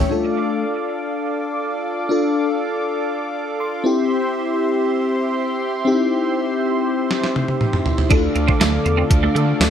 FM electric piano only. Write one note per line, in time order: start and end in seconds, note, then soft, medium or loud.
0.00 0.13 E3 medium
0.00 0.13 G3 soft
0.00 0.12 C#4 medium
0.00 0.12 A4 medium
0.00 0.13 C#5 loud
0.09 2.06 D4 medium
0.09 2.07 F4 medium
0.09 2.07 A4 medium
2.09 3.81 D4 medium
2.09 3.82 F4 medium
2.09 3.83 A4 medium
3.60 4.07 C6 medium
3.84 5.81 C4 medium
3.84 5.81 E4 medium
3.84 5.82 G4 medium
5.85 7.81 C4 medium
5.85 5.92 D#4 medium
5.85 7.83 G4 medium
5.92 7.85 E4 medium
8.10 9.70 D4 medium
8.10 8.17 E4 medium
8.10 9.70 A4 medium
8.17 9.70 F4 medium